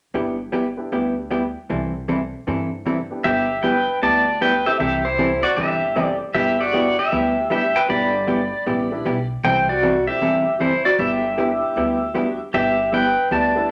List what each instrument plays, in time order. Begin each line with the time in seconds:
0.14 upright bass G1, hollow-body jazz guitar G3 B3 E4 G4, upright piano B3 D4 E4 G4
0.52 hollow-body jazz guitar G3 B3 E4 G4
0.77 upright piano B3 D4 E4 G4
0.92 upright bass D2, hollow-body jazz guitar G3 B3 E4 G4
1.31 hollow-body jazz guitar G3 B3 E4 G4
1.70 upright bass C2, hollow-body jazz guitar C3 E3 G3 C4 E4 A4
2.08 hollow-body jazz guitar C3 E3 G3 C4 E4 A4
2.47 upright bass G2, hollow-body jazz guitar C3 E3 G3 C4 E4 A4
2.86 hollow-body jazz guitar C3 E3 G3 C4 E4 A4
3.11 upright piano B3 D4 E4 G4
3.24 upright bass G1, hollow-body jazz guitar G3 B3 E4 G4, pedal steel guitar G4 E5
3.63 hollow-body jazz guitar G3 B3 E4 G4, pedal steel guitar B4 G5
4.02 upright bass D2, hollow-body jazz guitar G3 B3 E4 G4, pedal steel guitar D5 A5
4.41 hollow-body jazz guitar G3 B3 E4 G4, pedal steel guitar B4 G5
4.66 upright piano A3 C4 E4 G4, pedal steel guitar G4 E5
4.79 upright bass C2, hollow-body jazz guitar C3 E3 G3 C4 E4 A4, pedal steel guitar G4 E5
5.05 pedal steel guitar E4 C5
5.18 hollow-body jazz guitar C3 E3 G3 C4 E4 A4, upright piano A3 C4 E4 G4
5.43 pedal steel guitar F#4 D5
5.57 upright bass G1, hollow-body jazz guitar C3 E3 G3 C4 E4 A4, pedal steel guitar G4 E5
5.96 hollow-body jazz guitar C3 E3 G3 C4 E4 A4, upright piano A3 C4 E4 G4
6.03 pedal steel guitar D5
6.34 upright bass G1, hollow-body jazz guitar G3 B3 E4 G4, pedal steel guitar G4 E5
6.61 pedal steel guitar F#4 D5
6.73 upright piano G3 B3 D4 E4, hollow-body jazz guitar G3 B3 E4 G4
6.99 pedal steel guitar G4 E5
7.12 upright bass D2, hollow-body jazz guitar G3 B3 E4 G4
7.50 hollow-body jazz guitar G3 B3 E4 G4, upright piano G3 B3 D4 G4, pedal steel guitar G4 E5
7.76 pedal steel guitar B4 G5
7.89 upright bass G1, hollow-body jazz guitar G3 B3 E4 G4, pedal steel guitar D5 B5
8.27 hollow-body jazz guitar G3 B3 E4 G4
8.66 upright bass A1, hollow-body jazz guitar G3 B3 E4 G4
8.91 upright piano G3 B3 D4 E4
9.05 upright bass B1, hollow-body jazz guitar G3 B3 E4 G4
9.44 upright bass C2, hollow-body jazz guitar C3 E3 G3 C4 E4 A4, pedal steel guitar C5 G5
9.69 pedal steel guitar F#4 D5
9.83 hollow-body jazz guitar C3 E3 G3 C4 E4 A4
10.07 upright piano G3 A3 C4 E4, pedal steel guitar G4 E5
10.21 upright bass G1, hollow-body jazz guitar C3 E3 G3 C4 E4 A4
10.60 hollow-body jazz guitar C3 E3 G3 C4 E4 A4, pedal steel guitar E4 C5
10.85 pedal steel guitar F#4 D5
10.99 upright bass G1, hollow-body jazz guitar G3 B3 E4 G4, pedal steel guitar G4 E5
11.37 upright piano G3 B3 D4 E4, hollow-body jazz guitar G3 B3 E4 G4
11.76 upright bass D2, hollow-body jazz guitar G3 B3 E4 G4
12.14 upright piano G3 B3 D4 F#4, hollow-body jazz guitar G3 B3 E4 G4
12.54 upright bass G1, hollow-body jazz guitar G3 B3 E4 G4, pedal steel guitar G4 E5
12.93 hollow-body jazz guitar G3 B3 E4 G4, pedal steel guitar B4 G5
13.31 upright bass D2, hollow-body jazz guitar G3 B3 E4 G4, pedal steel guitar D5 A5
13.55 upright piano G3 B3 D4 E4